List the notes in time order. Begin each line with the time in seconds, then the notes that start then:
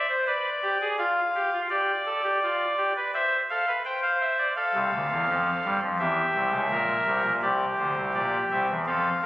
0.09 C5
0.27 B4 D5
0.63 G4
0.81 G#4
0.99 F4 F5
1.35 G4
1.53 F4
1.70 G4 D5
2.06 A4
2.24 G4
2.43 F4
2.77 G4
2.96 B4
3.14 C5 E5
3.50 A4 F5
3.68 B4
3.85 C5 G5
4.03 F5
4.21 E5
4.38 D5
4.56 A4 F5
4.74 C2 C3
4.93 D2 D3
5.11 E2 E3
5.28 F2 F3
5.65 G2 G3
5.82 F2 F3
5.99 E2 E3 G4 E5
6.34 C2 C3
6.51 C#2 C#3
6.70 A#1 A#2 A#4
7.06 C2 C3
7.24 A#1 A#2
7.42 C2 C3 G4 D5
7.78 D2 D3 C5
7.96 C2 C3
8.14 A#1 A#2 D5
8.51 C2 C3 E5
8.69 E2 E3
8.86 F2 F3 A4 F5
9.22 D2 D3 A#4